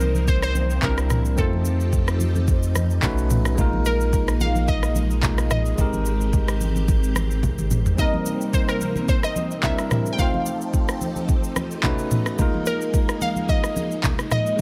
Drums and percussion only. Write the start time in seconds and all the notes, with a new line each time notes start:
0.00 high conga, shaker
0.15 high conga, shaker
0.28 kick, shaker
0.42 cross-stick, shaker
0.55 high conga, shaker
0.70 shaker
0.82 kick, clap, low conga, shaker
0.98 cross-stick, shaker
1.10 cross-stick, mid tom, high conga, shaker
1.25 shaker
1.38 kick, low conga, shaker
1.53 high conga
1.65 shaker
1.80 shaker
1.93 kick, shaker
2.08 cross-stick, shaker
2.20 high conga, shaker
2.35 high conga, shaker
2.48 kick, shaker
2.63 shaker
2.75 cross-stick, high conga, shaker
2.90 shaker
3.03 kick, clap, low conga, shaker
3.18 shaker
3.30 mid tom, high conga, shaker
3.45 cross-stick, shaker
3.58 kick, low conga, shaker
3.73 high conga
3.85 shaker
4.01 shaker
4.13 kick, shaker
4.28 cross-stick, shaker
4.40 high conga, shaker
4.55 high conga, shaker
4.68 kick, shaker
4.83 cross-stick, shaker
4.95 high conga, shaker
5.11 shaker
5.23 kick, clap, low conga, shaker
5.38 cross-stick, shaker
5.50 cross-stick, mid tom, high conga, shaker
5.66 shaker
5.78 kick, low conga, shaker
5.93 high conga, shaker
6.06 shaker
6.21 shaker
6.33 kick, low conga, shaker
6.48 cross-stick, shaker
6.61 high conga, shaker
6.75 high conga, shaker
6.88 kick, shaker
7.03 shaker
7.15 cross-stick, high conga, shaker
7.31 shaker
7.43 kick, high tom, low conga, shaker
7.58 mid tom, shaker
7.70 mid tom, high conga, shaker
7.86 floor tom, shaker
7.98 kick, low conga, shaker
8.14 high conga
8.26 shaker
8.41 shaker
8.53 kick, shaker
8.69 cross-stick, shaker
8.81 high conga, shaker
8.96 high conga, shaker
9.08 kick, shaker
9.23 cross-stick, shaker
9.36 high conga, shaker
9.51 shaker
9.63 kick, clap, low conga, shaker
9.79 cross-stick, shaker
9.91 cross-stick, mid tom, high conga, shaker
10.06 shaker
10.19 kick, low conga, shaker
10.34 high conga
10.46 shaker
10.61 shaker
10.74 kick, shaker
10.89 cross-stick, shaker
11.01 high conga, shaker
11.16 high conga, shaker
11.29 kick, shaker
11.44 shaker
11.56 cross-stick, high conga, shaker
11.71 shaker
11.83 kick, clap, low conga, shaker
11.99 shaker
12.11 mid tom, high conga, shaker
12.26 cross-stick, shaker
12.39 kick, low conga, shaker
12.54 high conga
12.66 shaker
12.81 shaker
12.94 kick, shaker
13.09 cross-stick, shaker
13.21 high conga, shaker
13.36 high conga, shaker
13.49 kick, shaker
13.64 cross-stick, shaker
13.76 high conga, shaker
13.91 shaker
14.04 kick, clap, low conga, shaker
14.19 cross-stick, shaker
14.31 cross-stick, mid tom, high conga, shaker
14.46 shaker